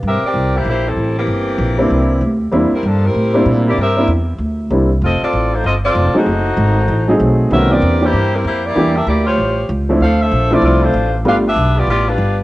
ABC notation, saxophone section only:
X:1
M:4/4
L:1/8
Q:"Swing" 1/4=192
K:Cmix
V:1 name="Saxophone section"
[CGBe] [CGBd]2 [B,EGc] [B,EGc] [G,CEA]2 [E,B,CG]- | [E,B,CG]6- [E,B,CG] z | z [G,CEB] [F,B,DA] [G,CEB]3 z [B,EGd] | [CGBe]2 z6 |
[CFA_e] [CFAd]2 [A,_EFc] [CFAe] [CFAd]2 [A,E^Fc]- | [A,_E^Fc]6- [A,EFc] z | [CGBe] [CGBd]2 [B,EGc]2 [G,CEB] [B,EGc] [B,EGd]- | [B,EGd] [DGBe] [B,EGd] [G,Fc_d]3 z2 |
[DAcf] [DAce]2 [CFAd] [CFAd] [A,DFc]2 z | [DG=Bf] [DGBe]2 [=B,FGd] [B,FGd] [G,DFB]2 z |]